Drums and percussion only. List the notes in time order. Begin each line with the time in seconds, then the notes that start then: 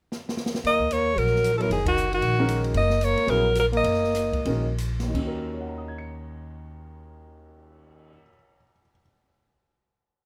0.12 snare
0.29 snare
0.37 snare
0.46 snare
0.55 snare
0.64 ride
0.80 kick
0.91 hi-hat pedal, ride
1.18 ride
1.27 snare
1.36 snare
1.44 hi-hat pedal, ride
1.60 ride
1.71 ride
1.86 kick, ride
1.97 hi-hat pedal
2.13 ride
2.22 ride
2.48 hi-hat pedal, ride
2.64 ride
2.74 ride
2.90 snare
3.01 hi-hat pedal, ride
3.17 ride
3.28 ride
3.55 hi-hat pedal, ride
3.73 ride
3.84 ride
3.94 snare
4.04 snare
4.14 snare, hi-hat pedal, ride
4.33 kick, ride
4.45 ride
4.78 hi-hat pedal, ride
5.00 snare, ride
5.14 kick, crash
5.37 cymbal swell